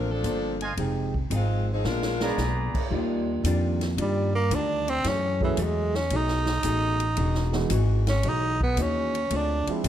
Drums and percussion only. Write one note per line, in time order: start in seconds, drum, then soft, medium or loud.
0.24 hi-hat pedal soft
0.24 ride medium
0.61 ride soft
0.77 ride medium
1.14 kick medium
1.31 hi-hat pedal soft
1.31 ride medium
1.84 snare soft
2.02 snare medium
2.20 snare medium
2.38 snare soft
2.38 hi-hat pedal soft
2.75 kick medium
2.75 crash medium
3.44 hi-hat pedal medium
3.44 ride medium
3.81 snare soft
3.81 ride soft
3.98 ride medium
4.51 hi-hat pedal soft
4.51 ride medium
4.88 ride soft
5.04 snare soft
5.04 ride medium
5.41 kick medium
5.57 hi-hat pedal medium
5.57 ride medium
5.94 snare soft
6.10 ride medium
6.28 snare soft
6.46 snare soft
6.63 hi-hat pedal medium
6.63 ride medium
7.00 ride soft
7.17 ride medium
7.35 snare soft
7.53 snare soft
7.70 hi-hat pedal medium
7.70 ride medium
8.07 snare medium
8.07 ride soft
8.23 ride medium
8.61 kick medium
8.77 hi-hat pedal medium
8.77 ride medium
9.15 ride soft
9.30 ride medium
9.67 ride soft
9.84 hi-hat pedal soft
9.84 ride medium